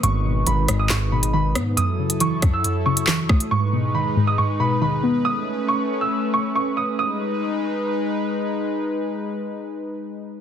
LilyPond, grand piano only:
\new Staff \with { instrumentName = "Grand piano" } { \time 4/4 \key gis \phrygian \tempo 4 = 138 cis'''4 b''8. dis'''16 cis'''8 b''8 b''8 r8 | dis'''4 cis'''8. e'''16 r8 cis'''8 cis'''8 dis'''8 | cis'''4 b''8. dis'''16 cis'''8 b''8 b''8 r8 | dis'''4 cis'''8. e'''16 r8 cis'''8 cis'''8 dis'''8 |
dis'''2. r4 | r1 | }